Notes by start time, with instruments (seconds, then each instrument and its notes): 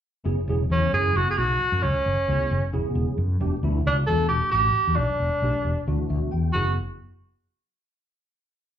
0.24 fretless electric bass F#1, tine electric piano C#3 F#3 B3 E4 G#4
0.48 fretless electric bass E1, tine electric piano C#3 F#3 B3 E4 G#4
0.70 fretless electric bass E2, tine electric piano C#3 F#3 B3 E4 G#4, tenor saxophone C#4
0.93 fretless electric bass F#2, tine electric piano C#3 F#3 B3 E4 G#4, tenor saxophone G#4
1.16 fretless electric bass F#1, tenor saxophone F#4
1.30 tenor saxophone G#4
1.37 fretless electric bass B1, tenor saxophone F#4
1.72 fretless electric bass F#2
1.83 fretless electric bass C#2, tenor saxophone C#4
1.96 muted fretless electric bass stroke
2.06 fretless electric bass F#1
2.28 fretless electric bass C#2, tine electric piano C#3 F#3 B3 E4 G#4
2.51 fretless electric bass F#1
2.72 fretless electric bass E1, tine electric piano C#3 F#3 B3 E4 G#4
2.84 muted fretless electric bass stroke
2.95 fretless electric bass E1
3.18 fretless electric bass F#2
3.40 fretless electric bass E1, tine electric piano B2 E3 A3 D4 G4
3.63 fretless electric bass D2, tine electric piano B2 E3 A3 D4 E4
3.85 fretless electric bass C#2, tine electric piano B2 E3 A3 D4 F#4, tenor saxophone D4
4.07 fretless electric bass E2, tine electric piano B2 E3 A3 D4 F#4, tenor saxophone A4
4.29 fretless electric bass E1, tenor saxophone G4
4.51 fretless electric bass A1, tenor saxophone G4
4.76 muted fretless electric bass stroke
4.87 fretless electric bass E2
4.96 fretless electric bass B1, tenor saxophone D4
5.10 muted fretless electric bass stroke
5.20 fretless electric bass E1
5.42 fretless electric bass B1, tine electric piano B2 E3 A3 D4 G4
5.65 fretless electric bass E1
5.87 fretless electric bass D2, tine electric piano B2 E3 A3 D4 F#4
5.99 muted fretless electric bass stroke
6.09 fretless electric bass D2, tine electric piano E5
6.31 fretless electric bass E2, tine electric piano G5
6.53 fretless electric bass F#1, tine electric piano C#3 F#3 B3 E4 G#4, tenor saxophone F#4